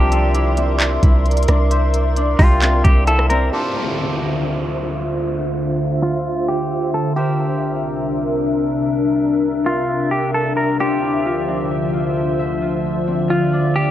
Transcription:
0.00 0.99 C2 loud
0.00 0.26 C4 medium
0.00 0.57 C4 loud
0.00 0.12 D4 loud
0.00 3.52 D4 medium
0.00 0.41 F4 medium
0.00 1.67 G4 medium
0.00 2.72 A#4 medium
0.00 3.49 A#4 medium
0.00 3.49 D5 medium
0.00 3.49 E5 medium
0.00 3.49 C6 medium
0.12 1.48 D4 medium
0.12 closed hi-hat medium
0.35 1.02 E4 medium
0.35 closed hi-hat medium
0.57 2.62 C4 loud
0.57 closed hi-hat medium
0.80 clap loud
0.80 closed hi-hat medium
1.03 1.46 C2 loud
1.03 3.07 E4 medium
1.03 kick medium
1.03 closed hi-hat medium
1.26 closed hi-hat soft
1.31 closed hi-hat medium
1.37 closed hi-hat medium
1.43 closed hi-hat medium
1.48 2.35 C2 loud
1.48 2.16 D4 medium
1.48 cross-stick loud
1.48 closed hi-hat medium
1.71 3.53 C5 medium
1.71 3.43 E5 medium
1.71 closed hi-hat medium
1.94 closed hi-hat medium
2.16 4.97 D4 medium
2.16 closed hi-hat medium
2.39 2.83 C2 loud
2.39 2.82 F4 loud
2.39 4.75 G4 medium
2.39 kick medium
2.39 open hi-hat medium
2.62 3.30 C4 loud
2.62 clap loud
2.62 closed hi-hat medium
2.84 3.50 C2 loud
2.84 3.06 G4 medium
2.84 kick medium
2.84 closed hi-hat medium
3.07 5.68 E4 medium
3.07 3.29 A4 loud
3.07 closed hi-hat medium
3.19 cross-stick medium
3.30 6.30 C4 loud
3.30 3.51 A#4 medium
3.30 closed hi-hat medium
3.53 7.13 D2 medium
3.53 7.13 D3 medium
3.53 13.91 D4 medium
3.53 7.13 F4 medium
3.53 5.31 G4 loud
3.53 7.13 C5 medium
3.53 5.33 E5 medium
3.53 7.13 E5 medium
3.53 downlifter medium
5.35 7.15 E5 medium
6.03 6.46 F4 medium
6.48 6.91 G4 medium
6.94 7.16 A4 medium
7.16 10.77 C2 medium
7.16 10.77 C3 medium
7.16 10.77 D4 medium
7.16 8.94 G4 medium
7.16 10.76 A#4 medium
7.16 10.77 A#4 medium
7.16 10.76 C5 medium
7.16 13.91 E5 medium
9.66 10.09 F4 medium
10.11 10.33 G4 medium
10.35 10.56 A4 medium
10.57 10.79 A#4 medium
10.80 13.91 D2 medium
10.80 13.91 D3 medium
10.80 13.91 F3 medium
10.80 11.48 D4 medium
10.80 13.91 F4 medium
10.80 12.58 G4 loud
10.80 13.91 C5 medium
10.80 12.60 C5 medium
11.03 12.68 E4 medium
11.26 11.93 F4 medium
11.48 13.53 D4 medium
11.94 12.61 F4 medium
12.39 13.91 E5 medium
12.62 13.29 F4 medium
12.62 13.91 D5 medium
13.08 13.91 C4 medium
13.30 13.91 F4 medium
13.30 13.73 F4 medium
13.53 13.91 D4 medium
13.76 13.91 G4 medium

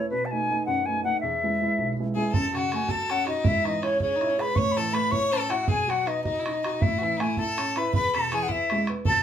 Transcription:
0.10 0.48 B2 medium
0.10 0.27 B4 medium
0.25 0.32 A5 medium
0.31 0.48 A3 soft
0.31 0.49 B3 soft
0.31 0.49 D#4 medium
0.31 0.65 G#5 medium
0.50 0.80 A3 soft
0.50 0.80 B3 soft
0.50 0.81 D#4 medium
0.66 1.04 F#2 medium
0.66 0.87 F#5 medium
0.86 1.03 A3 soft
0.86 1.03 B3 soft
0.86 1.04 D#4 soft
0.86 1.04 G#5 medium
1.04 1.19 A3 medium
1.04 1.19 B3 soft
1.04 1.19 D#4 medium
1.04 1.20 F#5 medium
1.20 1.60 E2 medium
1.20 1.91 E5 medium
1.43 1.60 G#3 medium
1.43 1.61 B3 soft
1.43 1.61 E4 medium
1.61 1.91 G#3 soft
1.61 1.92 B3 soft
1.61 1.92 E4 medium
1.78 2.15 B1 medium
2.00 2.15 G#3 soft
2.00 2.14 B3 soft
2.00 2.16 E4 medium
2.15 2.30 G#3 medium
2.15 2.30 B3 soft
2.15 2.31 E4 medium
2.15 2.31 G#4 medium
2.15 2.34 G#5 medium
2.32 3.42 F#2 medium
2.32 2.52 A4 medium
2.32 2.58 A5 medium
2.32 bodhran medium
2.54 2.71 C#3 soft
2.54 2.91 F#4 medium
2.54 2.73 F#5 medium
2.54 bodhran soft
2.72 2.90 A3 medium
2.72 2.92 G#5 medium
2.72 bodhran medium
2.88 3.09 F#4 soft
2.88 3.28 A4 medium
2.88 3.12 A5 medium
2.88 bodhran medium
3.10 3.27 C#4 medium
3.10 3.28 F#5 medium
3.10 bodhran medium
3.26 3.45 D#4 medium
3.26 3.45 F#4 medium
3.26 3.49 D#5 medium
3.26 bodhran soft
3.44 4.53 G#2 medium
3.44 3.66 E4 medium
3.44 3.67 E5 medium
3.44 bodhran medium
3.64 3.82 E3 soft
3.64 3.84 D#4 medium
3.64 3.83 D#5 medium
3.64 bodhran soft
3.82 4.01 C#4 medium
3.82 4.01 E4 medium
3.82 4.00 C#5 medium
3.82 bodhran medium
4.00 4.17 C#4 medium
4.00 4.21 G#4 medium
4.00 4.42 C#5 medium
4.00 bodhran medium
4.16 4.30 D#4 medium
4.21 4.39 E4 medium
4.21 bodhran soft
4.29 4.40 C#4 medium
4.38 4.56 G#4 medium
4.38 4.59 B4 medium
4.38 4.57 B5 medium
4.38 bodhran soft
4.55 5.65 A2 medium
4.55 4.79 C#5 medium
4.55 4.73 C#6 loud
4.55 bodhran medium
4.71 4.79 B5 medium
4.77 4.94 E3 medium
4.77 4.95 A4 medium
4.77 4.95 A5 medium
4.77 bodhran soft
4.92 5.11 A3 medium
4.92 5.12 B4 medium
4.92 5.13 B5 loud
4.92 bodhran medium
5.11 5.32 E4 soft
5.11 5.33 C#5 medium
5.11 5.35 C#6 medium
5.11 bodhran medium
5.31 5.50 C#4 medium
5.31 5.51 A4 medium
5.31 5.52 A5 medium
5.31 bodhran medium
5.49 5.67 E4 medium
5.49 5.70 F#4 medium
5.49 5.68 F#5 medium
5.49 bodhran medium
5.66 6.76 B2 medium
5.66 5.90 G#4 medium
5.66 5.91 G#5 medium
5.66 bodhran medium
5.87 6.05 F#3 soft
5.87 6.08 F#4 medium
5.87 6.09 F#5 medium
5.87 bodhran soft
6.06 6.24 B3 medium
6.06 6.24 D#4 medium
6.06 6.24 D#5 medium
6.06 bodhran medium
6.24 6.41 D#4 medium
6.24 6.45 F#4 soft
6.24 6.74 D#5 medium
6.24 bodhran medium
6.39 6.54 E4 medium
6.46 6.63 D#4 medium
6.46 bodhran medium
6.53 6.64 D#4 medium
6.64 6.84 D#4 medium
6.64 6.82 F#4 medium
6.64 bodhran medium
6.74 6.83 D#5 medium
6.81 7.90 A2 medium
6.81 7.00 E4 medium
6.81 7.22 E5 medium
6.81 bodhran medium
6.98 7.19 E3 medium
6.98 7.05 F#4 soft
7.03 7.18 E4 medium
7.17 7.37 A3 medium
7.17 7.24 D#4 medium
7.17 7.40 G#5 medium
7.17 bodhran medium
7.22 7.39 E4 medium
7.37 7.57 E4 soft
7.37 7.79 A4 medium
7.37 7.79 A5 medium
7.37 bodhran medium
7.57 7.75 C#4 medium
7.57 bodhran medium
7.76 7.93 E4 medium
7.76 7.94 B4 medium
7.76 7.94 B5 medium
7.76 bodhran medium
7.94 9.03 E2 medium
7.94 8.10 B4 medium
7.94 8.17 B5 loud
7.94 bodhran medium
8.10 8.15 B4 medium
8.14 8.32 B2 medium
8.14 8.35 A4 medium
8.14 8.32 A5 medium
8.14 bodhran medium
8.32 8.49 E3 soft
8.32 8.50 G#4 medium
8.32 8.44 G#5 medium
8.32 bodhran medium
8.43 8.53 F#5 medium
8.48 8.71 B3 medium
8.48 8.87 E4 medium
8.48 8.82 E5 medium
8.48 bodhran medium
8.70 8.88 G#3 medium
8.70 bodhran medium
8.87 9.06 B3 medium
8.87 bodhran medium
9.05 9.23 B2 medium
9.05 9.23 A4 medium
9.05 9.23 A5 loud
9.05 bodhran medium

